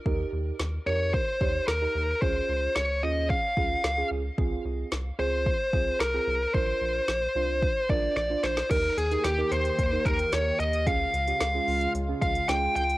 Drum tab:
CC |----------------|----------------|----------------|----------------|
HH |----------------|----------------|----------------|----------------|
SD |----o-------o---|----o-------o---|----o-------o---|----o-------o-oo|
BD |o-------o-o-----|o-------o-o-----|o-------o-o-----|o-------o-o-----|

CC |x---------------|----------------|
HH |x-xxx-xxx-xxx-xx|x-xxx-oxx-xxx-xx|
SD |----o-------o---|----o-------o---|
BD |o-------o-o-----|o---------o-----|